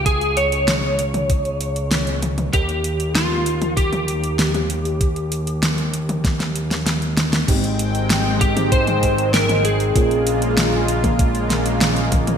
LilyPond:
<<
  \new Staff \with { instrumentName = "Lead electric guitar" } { \time 4/4 \key ees \mixolydian \tempo 4 = 97 aes'8 des''2. r8 | g'4 f'4 g'2~ | g'2. r4 | r4. g'8 c''4 bes'8 aes'8~ |
aes'4. r2 r8 | }
  \new Staff \with { instrumentName = "FM electric piano" } { \time 4/4 \key ees \mixolydian r1 | r1 | r1 | <aes c' ees' g'>4.~ <aes c' ees' g'>16 <aes c' ees' aes'>2~ <aes c' ees' aes'>16 |
<bes des' f' aes'>4.~ <bes des' f' aes'>16 <bes des' f' bes'>2~ <bes des' f' bes'>16 | }
  \new Staff \with { instrumentName = "Analog synth pad" } { \time 4/4 \key ees \mixolydian r1 | r1 | r1 | <ees aes c' g''>1 |
<des aes bes f'>1 | }
  \new Staff \with { instrumentName = "Analog synth bass" } { \clef bass \time 4/4 \key ees \mixolydian des,1 | ees,1~ | ees,1 | aes,,1 |
bes,,1 | }
  \new DrumStaff \with { instrumentName = "Drums" } \drummode { \time 4/4 <hh bd>16 hh16 hh16 hh16 <hh sn>8 hh16 <hh toml>16 <hh bd>16 hh16 hh16 hh16 <hh sn>16 hh16 <hh toml>16 <hh toml>16 | <hh bd>16 hh16 hh16 hh16 <hh sn>8 hh16 <hh toml>16 <hh bd>16 <hh toml>16 hh16 hh16 <hh sn>16 <hh toml>16 hh16 hh16 | <hh bd>16 hh16 hh16 hh16 <hh sn>16 hh16 hh16 <hh toml>16 <hh bd sn>16 <hh sn>16 hh16 <hh sn>16 <hh sn>16 hh16 <hh sn toml>16 <hh sn toml>16 | <cymc hh bd>16 hh16 hh16 hh16 <hh sn>8 <hh bd>16 <hh toml>16 <hh bd>16 <hh toml>16 <hh bd>16 hh16 <hh sn>16 <hh toml>16 hh16 hh16 |
<hh bd>16 hh16 hh16 hh16 <hh sn>8 hh16 <hh bd toml>16 <hh bd>16 hh16 <hh sn>16 hh16 <hh sn>16 hh16 <hh bd toml>16 <hh toml>16 | }
>>